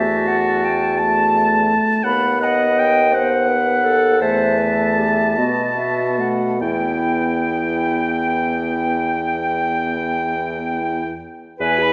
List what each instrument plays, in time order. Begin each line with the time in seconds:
Already playing: bassoon E2, french horn A3, clarinet F#4, flute E5, oboe A5
0.28 flute F#5
0.65 flute G5
0.97 french horn A3, oboe A5, flute A5
2.03 bassoon D#2, french horn B3, oboe F#5, flute B5
2.40 clarinet D#5, oboe F#5, flute F#5
2.79 oboe G5, flute G5
3.13 french horn B3, clarinet C5, oboe F#5, flute F#5
3.49 clarinet B4
3.84 clarinet A4
4.21 bassoon E2, french horn A3, clarinet C5, flute E5, oboe A5
4.57 clarinet B4
4.97 clarinet G4
5.37 bassoon B2, french horn B3, clarinet F#4, flute D#5
5.77 french horn B3, flute E5
6.18 french horn A3, flute F#5
6.61 bassoon E2, french horn B3, clarinet E4, oboe G5, flute G5
11.59 bassoon E2, french horn G#4, clarinet B4, oboe B4, flute G#5
11.80 french horn E4, flute B5